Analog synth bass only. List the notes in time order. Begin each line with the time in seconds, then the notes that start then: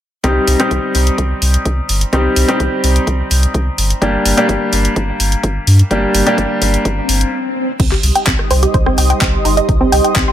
0.24 C2
0.47 C2
0.71 C2
0.95 C2
1.18 C2
1.42 C2
1.66 C2
1.89 G1
2.13 C2
2.36 C2
2.60 C2
2.84 C2
3.07 C2
3.31 C2
3.54 C2
3.78 G1
4.02 G1
4.25 G1
4.49 G1
4.73 G1
4.96 G1
5.20 G1
5.43 G1
5.67 G2
5.91 G1
6.14 G1
6.38 G1
6.62 G1
6.85 G1
7.09 G1
7.80 C2
8.03 C2
8.27 C2
8.51 C2
8.74 C2
8.98 C2
9.21 C2
9.45 G1
9.69 C2
9.92 C2
10.16 C2